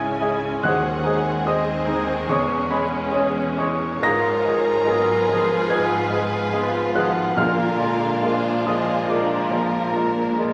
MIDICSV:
0, 0, Header, 1, 12, 480
1, 0, Start_track
1, 0, Tempo, 833333
1, 365, Time_signature, 4, 2, 24, 8
1, 1800, Tempo, 903614
1, 2280, Tempo, 839161
1, 4200, Tempo, 854701
1, 5967, End_track
2, 0, Start_track
2, 0, Title_t, "Violin section"
2, 0, Program_c, 0, 48
2, 0, Note_on_c, 0, 80, 73
2, 366, Note_off_c, 0, 80, 0
2, 371, Note_on_c, 0, 78, 76
2, 833, Note_off_c, 0, 78, 0
2, 838, Note_on_c, 0, 75, 72
2, 1313, Note_on_c, 0, 73, 70
2, 1317, Note_off_c, 0, 75, 0
2, 1551, Note_on_c, 0, 71, 68
2, 1555, Note_off_c, 0, 73, 0
2, 2028, Note_off_c, 0, 71, 0
2, 2036, Note_on_c, 0, 73, 73
2, 2279, Note_off_c, 0, 73, 0
2, 2281, Note_on_c, 0, 82, 95
2, 3235, Note_on_c, 0, 80, 73
2, 3240, Note_off_c, 0, 82, 0
2, 3956, Note_off_c, 0, 80, 0
2, 3956, Note_on_c, 0, 78, 73
2, 4195, Note_off_c, 0, 78, 0
2, 4200, Note_on_c, 0, 77, 80
2, 4927, Note_off_c, 0, 77, 0
2, 4931, Note_on_c, 0, 75, 63
2, 5169, Note_off_c, 0, 75, 0
2, 5172, Note_on_c, 0, 74, 66
2, 5405, Note_off_c, 0, 74, 0
2, 5967, End_track
3, 0, Start_track
3, 0, Title_t, "Flute section"
3, 0, Program_c, 1, 73
3, 117, Note_on_c, 1, 76, 43
3, 172, Note_off_c, 1, 76, 0
3, 358, Note_on_c, 1, 72, 54
3, 412, Note_off_c, 1, 72, 0
3, 597, Note_on_c, 1, 72, 51
3, 651, Note_off_c, 1, 72, 0
3, 839, Note_on_c, 1, 72, 55
3, 893, Note_off_c, 1, 72, 0
3, 1088, Note_on_c, 1, 72, 48
3, 1140, Note_off_c, 1, 72, 0
3, 1322, Note_on_c, 1, 73, 51
3, 1376, Note_off_c, 1, 73, 0
3, 1561, Note_on_c, 1, 73, 50
3, 1615, Note_off_c, 1, 73, 0
3, 1796, Note_on_c, 1, 73, 53
3, 1851, Note_off_c, 1, 73, 0
3, 2038, Note_on_c, 1, 73, 48
3, 2093, Note_off_c, 1, 73, 0
3, 2269, Note_on_c, 1, 71, 58
3, 2324, Note_off_c, 1, 71, 0
3, 2510, Note_on_c, 1, 71, 48
3, 2566, Note_off_c, 1, 71, 0
3, 2748, Note_on_c, 1, 71, 53
3, 2804, Note_off_c, 1, 71, 0
3, 2985, Note_on_c, 1, 71, 53
3, 3040, Note_off_c, 1, 71, 0
3, 3227, Note_on_c, 1, 71, 58
3, 3282, Note_off_c, 1, 71, 0
3, 3474, Note_on_c, 1, 71, 52
3, 3528, Note_off_c, 1, 71, 0
3, 3712, Note_on_c, 1, 71, 51
3, 3767, Note_off_c, 1, 71, 0
3, 3950, Note_on_c, 1, 71, 46
3, 4005, Note_off_c, 1, 71, 0
3, 4197, Note_on_c, 1, 70, 53
3, 4252, Note_off_c, 1, 70, 0
3, 4440, Note_on_c, 1, 70, 45
3, 4495, Note_off_c, 1, 70, 0
3, 4684, Note_on_c, 1, 70, 52
3, 4738, Note_off_c, 1, 70, 0
3, 4925, Note_on_c, 1, 70, 51
3, 4980, Note_off_c, 1, 70, 0
3, 5161, Note_on_c, 1, 70, 49
3, 5215, Note_off_c, 1, 70, 0
3, 5401, Note_on_c, 1, 70, 52
3, 5454, Note_off_c, 1, 70, 0
3, 5640, Note_on_c, 1, 70, 50
3, 5694, Note_off_c, 1, 70, 0
3, 5883, Note_on_c, 1, 70, 43
3, 5938, Note_off_c, 1, 70, 0
3, 5967, End_track
4, 0, Start_track
4, 0, Title_t, "Clarinet"
4, 0, Program_c, 2, 71
4, 114, Note_on_c, 2, 68, 52
4, 206, Note_off_c, 2, 68, 0
4, 377, Note_on_c, 2, 68, 54
4, 469, Note_off_c, 2, 68, 0
4, 606, Note_on_c, 2, 68, 50
4, 699, Note_off_c, 2, 68, 0
4, 849, Note_on_c, 2, 68, 49
4, 941, Note_off_c, 2, 68, 0
4, 1084, Note_on_c, 2, 68, 47
4, 1176, Note_off_c, 2, 68, 0
4, 1326, Note_on_c, 2, 68, 60
4, 1418, Note_off_c, 2, 68, 0
4, 1564, Note_on_c, 2, 68, 55
4, 1657, Note_off_c, 2, 68, 0
4, 1806, Note_on_c, 2, 68, 53
4, 1891, Note_off_c, 2, 68, 0
4, 2045, Note_on_c, 2, 68, 54
4, 2130, Note_off_c, 2, 68, 0
4, 2286, Note_on_c, 2, 68, 62
4, 2377, Note_off_c, 2, 68, 0
4, 2533, Note_on_c, 2, 68, 54
4, 2625, Note_off_c, 2, 68, 0
4, 2772, Note_on_c, 2, 68, 55
4, 2864, Note_off_c, 2, 68, 0
4, 3014, Note_on_c, 2, 68, 47
4, 3105, Note_off_c, 2, 68, 0
4, 3242, Note_on_c, 2, 68, 59
4, 3333, Note_off_c, 2, 68, 0
4, 3477, Note_on_c, 2, 68, 55
4, 3568, Note_off_c, 2, 68, 0
4, 3716, Note_on_c, 2, 68, 54
4, 3807, Note_off_c, 2, 68, 0
4, 3960, Note_on_c, 2, 68, 55
4, 4052, Note_off_c, 2, 68, 0
4, 4202, Note_on_c, 2, 65, 55
4, 4292, Note_off_c, 2, 65, 0
4, 4443, Note_on_c, 2, 65, 52
4, 4533, Note_off_c, 2, 65, 0
4, 4684, Note_on_c, 2, 65, 52
4, 4774, Note_off_c, 2, 65, 0
4, 4936, Note_on_c, 2, 65, 41
4, 5026, Note_off_c, 2, 65, 0
4, 5164, Note_on_c, 2, 65, 52
4, 5254, Note_off_c, 2, 65, 0
4, 5399, Note_on_c, 2, 65, 49
4, 5489, Note_off_c, 2, 65, 0
4, 5629, Note_on_c, 2, 65, 47
4, 5719, Note_off_c, 2, 65, 0
4, 5878, Note_on_c, 2, 65, 49
4, 5967, Note_off_c, 2, 65, 0
4, 5967, End_track
5, 0, Start_track
5, 0, Title_t, "Grand piano"
5, 0, Program_c, 3, 0
5, 0, Control_c, 3, 64, 127
5, 0, Note_on_c, 3, 44, 47
5, 0, Note_on_c, 3, 56, 47
5, 0, Note_on_c, 3, 64, 46
5, 0, Note_on_c, 3, 68, 50
5, 0, Note_on_c, 3, 76, 54
5, 0, Note_on_c, 3, 80, 57
5, 0, Note_on_c, 3, 88, 74
5, 0, Note_on_c, 3, 92, 80
5, 102, Note_off_c, 3, 64, 0
5, 102, Note_off_c, 3, 68, 0
5, 121, Note_off_c, 3, 56, 0
5, 121, Note_on_c, 3, 56, 49
5, 344, Note_off_c, 3, 92, 0
5, 347, Note_off_c, 3, 80, 0
5, 364, Note_off_c, 3, 56, 0
5, 365, Note_on_c, 3, 90, 78
5, 369, Note_on_c, 3, 39, 65
5, 375, Control_c, 3, 64, 0
5, 375, Note_on_c, 3, 78, 67
5, 378, Note_off_c, 3, 76, 0
5, 379, Note_off_c, 3, 44, 0
5, 379, Note_off_c, 3, 88, 0
5, 471, Control_c, 3, 64, 127
5, 617, Note_on_c, 3, 56, 55
5, 816, Note_off_c, 3, 90, 0
5, 821, Note_off_c, 3, 78, 0
5, 842, Note_on_c, 3, 60, 49
5, 846, Note_on_c, 3, 87, 76
5, 847, Note_on_c, 3, 68, 55
5, 851, Note_on_c, 3, 75, 64
5, 989, Note_off_c, 3, 56, 0
5, 1056, Note_off_c, 3, 60, 0
5, 1058, Note_off_c, 3, 68, 0
5, 1084, Note_on_c, 3, 51, 56
5, 1296, Note_off_c, 3, 39, 0
5, 1297, Note_off_c, 3, 87, 0
5, 1300, Note_off_c, 3, 75, 0
5, 1318, Note_on_c, 3, 40, 70
5, 1320, Note_off_c, 3, 51, 0
5, 1320, Note_on_c, 3, 85, 79
5, 1325, Control_c, 3, 64, 0
5, 1326, Note_on_c, 3, 73, 58
5, 1409, Control_c, 3, 64, 127
5, 1541, Note_off_c, 3, 85, 0
5, 1544, Note_off_c, 3, 73, 0
5, 1554, Note_on_c, 3, 56, 52
5, 1558, Note_on_c, 3, 83, 77
5, 1564, Note_on_c, 3, 71, 61
5, 1795, Note_on_c, 3, 61, 49
5, 1795, Note_on_c, 3, 68, 56
5, 1941, Note_off_c, 3, 56, 0
5, 2016, Note_off_c, 3, 61, 0
5, 2016, Note_off_c, 3, 68, 0
5, 2019, Note_off_c, 3, 83, 0
5, 2022, Note_off_c, 3, 71, 0
5, 2037, Note_on_c, 3, 52, 51
5, 2044, Note_on_c, 3, 85, 70
5, 2052, Note_on_c, 3, 73, 52
5, 2260, Note_off_c, 3, 40, 0
5, 2266, Note_off_c, 3, 85, 0
5, 2271, Note_off_c, 3, 73, 0
5, 2278, Note_on_c, 3, 44, 69
5, 2279, Note_off_c, 3, 52, 0
5, 2282, Note_on_c, 3, 94, 102
5, 2288, Note_on_c, 3, 82, 72
5, 2291, Control_c, 3, 64, 0
5, 2386, Control_c, 3, 64, 127
5, 2518, Note_on_c, 3, 56, 57
5, 2761, Note_on_c, 3, 68, 59
5, 2762, Note_on_c, 3, 59, 53
5, 2903, Note_off_c, 3, 56, 0
5, 2978, Note_off_c, 3, 59, 0
5, 2978, Note_off_c, 3, 68, 0
5, 3000, Note_on_c, 3, 53, 58
5, 3216, Note_off_c, 3, 44, 0
5, 3218, Note_off_c, 3, 94, 0
5, 3221, Note_off_c, 3, 82, 0
5, 3236, Note_on_c, 3, 92, 74
5, 3243, Note_on_c, 3, 44, 66
5, 3246, Note_on_c, 3, 80, 54
5, 3383, Note_off_c, 3, 53, 0
5, 3481, Note_on_c, 3, 56, 53
5, 3716, Note_on_c, 3, 59, 51
5, 3716, Note_on_c, 3, 68, 53
5, 3863, Note_off_c, 3, 56, 0
5, 3934, Note_off_c, 3, 59, 0
5, 3934, Note_off_c, 3, 92, 0
5, 3935, Note_off_c, 3, 68, 0
5, 3939, Note_off_c, 3, 80, 0
5, 3952, Note_on_c, 3, 53, 55
5, 3954, Note_on_c, 3, 90, 75
5, 3960, Note_on_c, 3, 78, 60
5, 4180, Note_off_c, 3, 44, 0
5, 4181, Note_off_c, 3, 90, 0
5, 4185, Note_off_c, 3, 78, 0
5, 4188, Note_on_c, 3, 46, 73
5, 4194, Note_on_c, 3, 89, 90
5, 4198, Note_off_c, 3, 53, 0
5, 4198, Note_on_c, 3, 77, 65
5, 4211, Control_c, 3, 64, 0
5, 4290, Control_c, 3, 64, 127
5, 4434, Note_on_c, 3, 56, 50
5, 4674, Note_on_c, 3, 58, 49
5, 4674, Note_on_c, 3, 65, 54
5, 4827, Note_off_c, 3, 56, 0
5, 4900, Note_off_c, 3, 58, 0
5, 4900, Note_off_c, 3, 65, 0
5, 4902, Note_off_c, 3, 89, 0
5, 4904, Note_off_c, 3, 77, 0
5, 4915, Note_on_c, 3, 53, 51
5, 4920, Note_on_c, 3, 87, 72
5, 4931, Note_on_c, 3, 75, 56
5, 5139, Note_off_c, 3, 46, 0
5, 5147, Note_off_c, 3, 87, 0
5, 5152, Note_off_c, 3, 75, 0
5, 5152, Note_on_c, 3, 56, 52
5, 5162, Note_on_c, 3, 86, 64
5, 5169, Note_on_c, 3, 74, 49
5, 5303, Note_off_c, 3, 53, 0
5, 5384, Note_off_c, 3, 86, 0
5, 5387, Note_off_c, 3, 74, 0
5, 5392, Note_on_c, 3, 53, 51
5, 5537, Note_off_c, 3, 56, 0
5, 5626, Note_on_c, 3, 58, 46
5, 5629, Note_on_c, 3, 65, 46
5, 5777, Note_off_c, 3, 53, 0
5, 5851, Note_off_c, 3, 58, 0
5, 5852, Note_off_c, 3, 65, 0
5, 5876, Note_on_c, 3, 56, 48
5, 5967, Note_off_c, 3, 56, 0
5, 5967, End_track
6, 0, Start_track
6, 0, Title_t, "French horn section"
6, 0, Program_c, 4, 60
6, 0, Note_on_c, 4, 68, 68
6, 365, Note_off_c, 4, 68, 0
6, 368, Note_on_c, 4, 66, 68
6, 831, Note_off_c, 4, 66, 0
6, 838, Note_on_c, 4, 63, 74
6, 1316, Note_on_c, 4, 61, 71
6, 1317, Note_off_c, 4, 63, 0
6, 1539, Note_on_c, 4, 59, 64
6, 1551, Note_off_c, 4, 61, 0
6, 1939, Note_off_c, 4, 59, 0
6, 2029, Note_on_c, 4, 61, 61
6, 2263, Note_on_c, 4, 70, 84
6, 2271, Note_off_c, 4, 61, 0
6, 3215, Note_on_c, 4, 68, 77
6, 3230, Note_off_c, 4, 70, 0
6, 3944, Note_on_c, 4, 66, 68
6, 3946, Note_off_c, 4, 68, 0
6, 4189, Note_off_c, 4, 66, 0
6, 4202, Note_on_c, 4, 65, 76
6, 4929, Note_off_c, 4, 65, 0
6, 4937, Note_on_c, 4, 63, 65
6, 5172, Note_off_c, 4, 63, 0
6, 5172, Note_on_c, 4, 62, 70
6, 5405, Note_off_c, 4, 62, 0
6, 5967, End_track
7, 0, Start_track
7, 0, Title_t, "Violin section"
7, 0, Program_c, 5, 48
7, 0, Note_on_c, 5, 61, 44
7, 119, Note_off_c, 5, 61, 0
7, 119, Note_on_c, 5, 64, 50
7, 243, Note_off_c, 5, 64, 0
7, 247, Note_on_c, 5, 61, 51
7, 350, Note_on_c, 5, 56, 60
7, 351, Note_on_c, 5, 68, 62
7, 366, Note_off_c, 5, 61, 0
7, 468, Note_off_c, 5, 56, 0
7, 473, Note_on_c, 5, 60, 50
7, 597, Note_off_c, 5, 60, 0
7, 602, Note_on_c, 5, 63, 51
7, 712, Note_on_c, 5, 60, 49
7, 721, Note_off_c, 5, 63, 0
7, 835, Note_off_c, 5, 60, 0
7, 835, Note_on_c, 5, 56, 54
7, 956, Note_off_c, 5, 56, 0
7, 959, Note_on_c, 5, 60, 51
7, 1070, Note_on_c, 5, 63, 56
7, 1078, Note_off_c, 5, 60, 0
7, 1190, Note_on_c, 5, 60, 53
7, 1193, Note_off_c, 5, 63, 0
7, 1311, Note_on_c, 5, 56, 57
7, 1314, Note_off_c, 5, 60, 0
7, 1422, Note_on_c, 5, 61, 52
7, 1426, Note_off_c, 5, 56, 0
7, 1541, Note_on_c, 5, 56, 53
7, 1549, Note_off_c, 5, 61, 0
7, 1670, Note_off_c, 5, 56, 0
7, 1671, Note_on_c, 5, 61, 59
7, 1788, Note_on_c, 5, 56, 54
7, 1797, Note_off_c, 5, 61, 0
7, 1908, Note_on_c, 5, 61, 53
7, 1912, Note_off_c, 5, 56, 0
7, 2029, Note_on_c, 5, 56, 55
7, 2035, Note_off_c, 5, 61, 0
7, 2152, Note_on_c, 5, 61, 53
7, 2157, Note_off_c, 5, 56, 0
7, 2253, Note_off_c, 5, 68, 0
7, 2276, Note_off_c, 5, 61, 0
7, 2279, Note_on_c, 5, 65, 62
7, 2279, Note_on_c, 5, 73, 61
7, 2507, Note_off_c, 5, 65, 0
7, 2512, Note_on_c, 5, 68, 62
7, 2739, Note_off_c, 5, 73, 0
7, 2758, Note_on_c, 5, 71, 68
7, 3712, Note_off_c, 5, 68, 0
7, 3716, Note_on_c, 5, 65, 58
7, 4195, Note_off_c, 5, 65, 0
7, 4198, Note_off_c, 5, 71, 0
7, 4198, Note_on_c, 5, 70, 62
7, 4202, Note_on_c, 5, 65, 68
7, 4680, Note_on_c, 5, 68, 60
7, 4684, Note_off_c, 5, 70, 0
7, 4921, Note_off_c, 5, 68, 0
7, 4931, Note_on_c, 5, 68, 61
7, 5164, Note_off_c, 5, 68, 0
7, 5171, Note_on_c, 5, 70, 61
7, 5617, Note_off_c, 5, 65, 0
7, 5638, Note_on_c, 5, 62, 49
7, 5967, Note_off_c, 5, 62, 0
7, 5967, Note_off_c, 5, 70, 0
7, 5967, End_track
8, 0, Start_track
8, 0, Title_t, "Bassoon"
8, 0, Program_c, 6, 70
8, 126, Note_on_c, 6, 56, 49
8, 218, Note_off_c, 6, 56, 0
8, 372, Note_on_c, 6, 56, 58
8, 465, Note_off_c, 6, 56, 0
8, 612, Note_on_c, 6, 56, 54
8, 704, Note_off_c, 6, 56, 0
8, 848, Note_on_c, 6, 56, 53
8, 940, Note_off_c, 6, 56, 0
8, 1081, Note_on_c, 6, 56, 48
8, 1173, Note_off_c, 6, 56, 0
8, 1330, Note_on_c, 6, 56, 58
8, 1422, Note_off_c, 6, 56, 0
8, 1564, Note_on_c, 6, 56, 54
8, 1656, Note_off_c, 6, 56, 0
8, 1795, Note_on_c, 6, 56, 53
8, 1880, Note_off_c, 6, 56, 0
8, 2041, Note_on_c, 6, 56, 54
8, 2126, Note_off_c, 6, 56, 0
8, 2278, Note_on_c, 6, 56, 58
8, 2369, Note_off_c, 6, 56, 0
8, 2517, Note_on_c, 6, 56, 55
8, 2609, Note_off_c, 6, 56, 0
8, 2752, Note_on_c, 6, 56, 61
8, 2844, Note_off_c, 6, 56, 0
8, 2990, Note_on_c, 6, 56, 52
8, 3082, Note_off_c, 6, 56, 0
8, 3232, Note_on_c, 6, 56, 59
8, 3324, Note_off_c, 6, 56, 0
8, 3463, Note_on_c, 6, 56, 52
8, 3554, Note_off_c, 6, 56, 0
8, 3711, Note_on_c, 6, 56, 55
8, 3803, Note_off_c, 6, 56, 0
8, 3955, Note_on_c, 6, 56, 55
8, 4047, Note_off_c, 6, 56, 0
8, 4191, Note_on_c, 6, 56, 54
8, 4281, Note_off_c, 6, 56, 0
8, 4434, Note_on_c, 6, 56, 52
8, 4524, Note_off_c, 6, 56, 0
8, 4671, Note_on_c, 6, 56, 54
8, 4761, Note_off_c, 6, 56, 0
8, 4924, Note_on_c, 6, 56, 46
8, 5014, Note_off_c, 6, 56, 0
8, 5160, Note_on_c, 6, 56, 52
8, 5250, Note_off_c, 6, 56, 0
8, 5404, Note_on_c, 6, 56, 44
8, 5494, Note_off_c, 6, 56, 0
8, 5646, Note_on_c, 6, 56, 50
8, 5735, Note_off_c, 6, 56, 0
8, 5886, Note_on_c, 6, 56, 49
8, 5967, Note_off_c, 6, 56, 0
8, 5967, End_track
9, 0, Start_track
9, 0, Title_t, "Viola section"
9, 0, Program_c, 7, 48
9, 0, Note_on_c, 7, 56, 49
9, 0, Note_on_c, 7, 61, 53
9, 341, Note_off_c, 7, 56, 0
9, 363, Note_on_c, 7, 56, 62
9, 816, Note_off_c, 7, 61, 0
9, 838, Note_on_c, 7, 60, 55
9, 1314, Note_on_c, 7, 61, 62
9, 1317, Note_off_c, 7, 60, 0
9, 2259, Note_off_c, 7, 56, 0
9, 2274, Note_on_c, 7, 65, 64
9, 2275, Note_on_c, 7, 53, 58
9, 2279, Note_off_c, 7, 61, 0
9, 2738, Note_off_c, 7, 53, 0
9, 2750, Note_on_c, 7, 54, 68
9, 2992, Note_on_c, 7, 53, 60
9, 2995, Note_off_c, 7, 54, 0
9, 3705, Note_off_c, 7, 53, 0
9, 3712, Note_on_c, 7, 53, 60
9, 3950, Note_off_c, 7, 53, 0
9, 3950, Note_on_c, 7, 51, 55
9, 4175, Note_off_c, 7, 65, 0
9, 4192, Note_on_c, 7, 50, 60
9, 4193, Note_on_c, 7, 58, 58
9, 4197, Note_off_c, 7, 51, 0
9, 4432, Note_on_c, 7, 62, 57
9, 4438, Note_off_c, 7, 58, 0
9, 4671, Note_off_c, 7, 50, 0
9, 4678, Note_on_c, 7, 53, 68
9, 5148, Note_off_c, 7, 62, 0
9, 5160, Note_on_c, 7, 62, 54
9, 5395, Note_off_c, 7, 62, 0
9, 5399, Note_on_c, 7, 58, 53
9, 5616, Note_off_c, 7, 53, 0
9, 5629, Note_off_c, 7, 58, 0
9, 5635, Note_on_c, 7, 58, 58
9, 5874, Note_on_c, 7, 56, 50
9, 5878, Note_off_c, 7, 58, 0
9, 5967, Note_off_c, 7, 56, 0
9, 5967, End_track
10, 0, Start_track
10, 0, Title_t, "Timpani"
10, 0, Program_c, 8, 47
10, 363, Note_on_c, 8, 51, 60
10, 1054, Note_off_c, 8, 51, 0
10, 4190, Note_on_c, 8, 46, 67
10, 4900, Note_off_c, 8, 46, 0
10, 5967, End_track
11, 0, Start_track
11, 0, Title_t, "Cello section"
11, 0, Program_c, 10, 48
11, 0, Note_on_c, 10, 49, 55
11, 342, Note_off_c, 10, 49, 0
11, 365, Note_on_c, 10, 39, 63
11, 1298, Note_off_c, 10, 39, 0
11, 1311, Note_on_c, 10, 40, 63
11, 2278, Note_off_c, 10, 40, 0
11, 2282, Note_on_c, 10, 44, 71
11, 4179, Note_off_c, 10, 44, 0
11, 4198, Note_on_c, 10, 46, 66
11, 5967, Note_off_c, 10, 46, 0
11, 5967, End_track
12, 0, Start_track
12, 0, Title_t, "Double bass section"
12, 0, Program_c, 11, 48
12, 0, Note_on_c, 11, 37, 50
12, 344, Note_off_c, 11, 37, 0
12, 368, Note_on_c, 11, 39, 61
12, 1299, Note_off_c, 11, 39, 0
12, 1321, Note_on_c, 11, 28, 70
12, 2283, Note_off_c, 11, 28, 0
12, 2284, Note_on_c, 11, 32, 61
12, 4180, Note_off_c, 11, 32, 0
12, 4198, Note_on_c, 11, 34, 59
12, 5967, Note_off_c, 11, 34, 0
12, 5967, End_track
0, 0, End_of_file